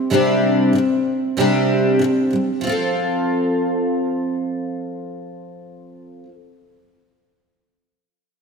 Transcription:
Already playing: C4
0.10 C3 G3 C4 D4 G4
0.73 C3 G3
1.37 C3 G3 C4 D4 G4
1.99 C3 G3
2.31 C3 G3
2.61 F3 C4
2.67 F4 A4

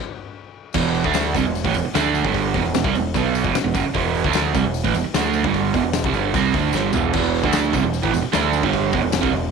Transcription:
0.73 E1 E2 B2 E3, kick, crash, tambourine
0.94 open hi-hat
1.04 D2 D3 A3 D4, kick
1.14 snare, open hi-hat, tambourine
1.35 C2 C3 G3, kick, open hi-hat, tambourine
1.44 E1 E2 B2
1.55 open hi-hat, tambourine
1.65 A1 A2 E3, kick
1.74 E1 E2 B2, open hi-hat, tambourine
1.85 muted picked electric bass stroke, muted overdriven electric guitar stroke
1.95 D2 D3 A3 D4, snare, open hi-hat, tambourine
2.05 snare
2.15 open hi-hat, tambourine
2.24 G1 G2 D3 G3, kick
2.34 kick, open hi-hat, tambourine
2.54 E1 E2 B2, kick, open hi-hat
2.64 E1 E2 B2, snare
2.74 E1 E2 B2, snare, open hi-hat, tambourine
2.84 C2 C3 G3, kick
2.94 E1 E2 B2, open hi-hat, tambourine
3.14 B1 B2 F#3 B3, kick, open hi-hat, tambourine
3.34 open hi-hat, tambourine
3.44 E1 E2 B2, kick
3.54 muted picked electric bass stroke, muted overdriven electric guitar stroke, snare, open hi-hat, tambourine
3.64 E1 E2 B2
3.74 F#1 F#2 C#3, kick, open hi-hat, tambourine
3.85 muted overdriven electric guitar stroke, muted picked electric bass stroke
3.94 E1 E2 B2 E3, kick, open hi-hat, tambourine
4.15 open hi-hat
4.24 D2 D3 A3 D4, kick
4.33 snare, open hi-hat, tambourine
4.54 C2 C3 G3, kick, open hi-hat, tambourine
4.65 E1 E2 B2
4.74 open hi-hat, tambourine
4.84 A1 A2 E3, kick
4.94 E1 E2 B2, open hi-hat, tambourine
5.05 muted overdriven electric guitar stroke, muted picked electric bass stroke
5.14 D2 D3 A3 D4, snare, open hi-hat, tambourine
5.33 open hi-hat, tambourine
5.44 G1 G2 D3 G3, kick
5.54 kick, open hi-hat, tambourine
5.74 E1 E2 B2, kick, open hi-hat, tambourine
5.83 E1 E2 B2
5.93 E1 E2 B2, snare, open hi-hat, tambourine
6.04 C2 C3 G3, kick
6.13 G1 G2 D3 G3, open hi-hat, tambourine
6.34 C2 C3 G3 C4, kick, open hi-hat, tambourine
6.54 D2 D3 A3 D4, kick, open hi-hat
6.72 G1 G2 D3 G3, snare, tambourine
6.92 E1 E2 B2 E3, floor tom, tambourine
7.13 E1 E2 B2 E3, kick, crash, tambourine
7.34 open hi-hat
7.43 D2 D3 A3 D4, kick
7.53 snare, open hi-hat, tambourine
7.73 C2 C3 G3, kick, open hi-hat, tambourine
7.83 E1 E2 B2
7.93 open hi-hat, tambourine
8.02 A1 A2 E3, kick
8.13 E1 E2 B2, open hi-hat, tambourine
8.22 muted overdriven electric guitar stroke, muted picked electric bass stroke
8.32 D2 D3 A3 D4, snare, open hi-hat, tambourine
8.53 open hi-hat, tambourine
8.63 G1 G2 D3 G3, kick
8.73 kick, open hi-hat, tambourine
8.93 E1 E2 B2, kick, open hi-hat
9.03 E1 E2 B2
9.12 E1 E2 B2, snare, open hi-hat, tambourine
9.21 C2 C3 G3, kick
9.33 E1 E2 B2, open hi-hat

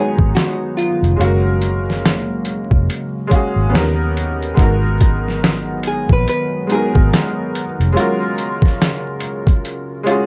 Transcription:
Already playing: D#3 F#3 G#3 B3 D#4 F#4 G#4 C#5
0.19 G#1, kick
0.35 F#4, snare, closed hi-hat
0.77 F4, closed hi-hat
1.02 F1, closed hi-hat
1.16 F#1 C#3 G#3 A#3 C#4 F5
1.21 F#4 A#4, closed hi-hat
1.61 closed hi-hat
1.90 snare
2.06 snare, closed hi-hat
2.45 closed hi-hat
2.71 F1, kick
2.90 closed hi-hat
3.27 G#3 C#4 F5, kick, closed hi-hat
3.34 F#4 G#4
3.56 G#1
3.70 D#2 D#3 B3 C#4 G4
3.74 D#4 G4 A#4, snare, closed hi-hat
4.17 closed hi-hat
4.43 closed hi-hat
4.54 G#1 F#3 G#3 B3, kick
4.58 D#4 F#4 A#4, closed hi-hat
5.00 kick, closed hi-hat
5.28 snare
5.44 snare, closed hi-hat
5.83 closed hi-hat
5.88 G#4
6.09 A#1 B4, kick
6.28 B4, closed hi-hat
6.67 G#3 B3 D#4, closed hi-hat
6.72 F#4 G#4 A#4
6.95 G#1, kick
7.13 snare, closed hi-hat
7.55 closed hi-hat
7.80 F1, closed hi-hat
7.92 C#3 G#3 C#4 F4 A#4
7.97 F#4 A#4, closed hi-hat
8.38 closed hi-hat
8.62 kick, snare
8.82 snare, closed hi-hat
9.20 closed hi-hat
9.47 kick, closed hi-hat
9.65 closed hi-hat
10.03 G#3 C#4 F4, closed hi-hat
10.09 F#4 G#4

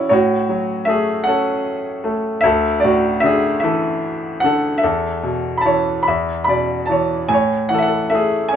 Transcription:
Already playing: C#3 E3 C#4 E4 F#4 A4 C#5 D5 E5
0.09 A2 F#4 C#5
0.49 F#3
0.85 A3 G#4 E5
1.24 C#4 F#5
1.28 A4
2.04 A3
2.41 D2 E5
2.46 A4
2.80 D5
2.84 A2 F#4
3.20 D3 E5
3.26 G#4
3.60 E3 E5
3.64 A4
4.40 D3 F#5
4.45 A4
4.78 E5
4.83 E2 A4
5.23 B2
5.58 A5 B5
5.65 E3 C#5
6.03 B5
6.08 E2 E5
6.44 B2 B5
6.49 D5
6.86 E3 A5
6.92 C#5
7.28 A2 G#5
7.33 C#5
7.69 E3 F#5
7.74 A4
7.78 E5 F#5
7.88 A4
8.10 A3 E5
8.15 G#4
8.49 C#4 G#5

